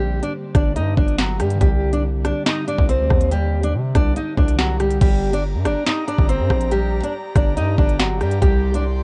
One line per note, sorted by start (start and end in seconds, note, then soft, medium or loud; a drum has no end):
0.00 0.21 A#1 loud
0.00 1.54 D3 medium
0.00 0.21 G3 medium
0.00 1.56 G3 medium
0.00 1.58 A#3 medium
0.00 0.21 G4 loud
0.00 1.60 G4 medium
0.23 0.32 D4 medium
0.23 0.32 D5 medium
0.23 closed hi-hat medium
0.55 0.78 G1 loud
0.55 0.73 D4 medium
0.55 0.73 D5 medium
0.55 kick loud
0.55 cross-stick loud
0.55 closed hi-hat medium
0.76 0.96 G2 loud
0.76 0.94 D#4 medium
0.76 0.94 D#5 medium
0.76 closed hi-hat medium
0.97 1.41 G1 loud
0.97 1.15 D4 medium
0.97 1.16 D5 medium
0.97 kick medium
1.08 closed hi-hat soft
1.18 1.37 F#3 medium
1.18 1.36 F#4 medium
1.18 snare loud
1.18 clap medium
1.18 closed hi-hat medium
1.40 1.60 G2 loud
1.40 1.58 G3 medium
1.40 1.58 G4 medium
1.40 cross-stick medium
1.40 closed hi-hat medium
1.50 closed hi-hat medium
1.55 4.52 D3 medium
1.55 4.54 G3 medium
1.61 2.33 C2 loud
1.61 1.91 G3 medium
1.61 4.56 C4 medium
1.61 1.91 G4 medium
1.61 kick loud
1.61 closed hi-hat medium
1.67 4.58 G4 medium
1.93 2.02 D4 medium
1.93 2.02 D5 medium
1.93 closed hi-hat medium
2.25 2.43 D4 medium
2.25 2.43 D5 medium
2.25 cross-stick medium
2.25 closed hi-hat medium
2.46 2.64 D#4 medium
2.46 2.64 D#5 medium
2.46 snare loud
2.46 clap medium
2.67 2.85 D4 medium
2.67 2.86 D5 medium
2.67 closed hi-hat medium
2.78 3.01 C2 loud
2.78 kick medium
2.89 3.29 C4 medium
2.89 3.29 C5 medium
2.89 closed hi-hat medium
2.99 3.09 D2 loud
3.10 3.75 D#2 loud
3.10 kick loud
3.10 cross-stick medium
3.20 closed hi-hat medium
3.31 3.62 G3 medium
3.31 3.61 G4 loud
3.31 closed hi-hat medium
3.63 3.72 D4 medium
3.63 3.73 D5 medium
3.63 closed hi-hat medium
3.74 3.94 C3 loud
3.95 4.16 C2 loud
3.95 4.13 D4 medium
3.95 4.14 D5 medium
3.95 kick loud
3.95 cross-stick medium
3.95 closed hi-hat medium
4.16 4.34 D#4 medium
4.16 4.35 D#5 medium
4.16 closed hi-hat medium
4.37 4.99 C2 loud
4.37 4.56 D4 medium
4.37 4.56 D5 medium
4.37 kick medium
4.48 closed hi-hat medium
4.56 5.00 D3 soft
4.56 4.77 F#3 medium
4.56 5.01 G3 soft
4.56 5.02 C4 soft
4.56 4.77 F#4 medium
4.56 snare loud
4.60 5.03 G4 medium
4.60 clap medium
4.80 4.99 G3 medium
4.80 4.98 G4 medium
4.80 cross-stick medium
4.80 closed hi-hat medium
4.91 closed hi-hat medium
5.01 5.56 G1 loud
5.01 5.32 G3 medium
5.01 9.03 G4 medium
5.01 5.31 G4 loud
5.01 9.03 D5 medium
5.01 8.38 A#5 medium
5.01 kick loud
5.01 closed hi-hat medium
5.01 crash loud
5.33 5.42 D4 medium
5.33 5.43 D5 medium
5.33 closed hi-hat medium
5.55 5.67 G2 loud
5.65 5.75 G1 loud
5.65 5.83 D4 medium
5.65 5.84 D5 medium
5.65 cross-stick loud
5.65 closed hi-hat medium
5.87 6.05 D#4 medium
5.87 6.05 D#5 medium
5.87 snare loud
5.87 clap medium
6.08 6.26 D4 medium
6.08 6.26 D5 medium
6.08 closed hi-hat medium
6.19 6.41 G1 loud
6.19 kick medium
6.29 6.69 C4 medium
6.29 6.70 C5 medium
6.29 closed hi-hat medium
6.40 6.50 G2 loud
6.50 7.01 A#1 loud
6.50 kick loud
6.50 cross-stick medium
6.61 closed hi-hat medium
6.72 7.02 G3 medium
6.72 7.02 G4 loud
6.72 closed hi-hat medium
7.03 7.13 D4 medium
7.03 7.13 D5 medium
7.03 closed hi-hat medium
7.35 7.58 G1 loud
7.35 7.54 D4 medium
7.35 7.54 D5 medium
7.35 kick loud
7.35 cross-stick medium
7.35 closed hi-hat medium
7.57 7.77 G2 loud
7.57 7.75 D#4 medium
7.57 7.75 D#5 medium
7.57 closed hi-hat medium
7.78 8.22 G1 loud
7.78 7.96 D4 medium
7.78 7.96 D5 medium
7.78 kick medium
7.89 closed hi-hat soft
7.99 8.18 F#3 medium
7.99 8.17 F#4 medium
7.99 snare loud
7.99 clap medium
7.99 closed hi-hat medium
8.21 8.41 G2 loud
8.21 8.39 G3 medium
8.21 8.39 G4 medium
8.21 cross-stick medium
8.21 closed hi-hat medium
8.31 closed hi-hat medium
8.42 9.03 C2 loud
8.42 8.72 G3 medium
8.42 8.72 G4 loud
8.42 9.03 C6 medium
8.42 kick loud
8.42 closed hi-hat medium
8.74 8.83 D4 medium
8.74 8.83 D5 medium
8.74 closed hi-hat medium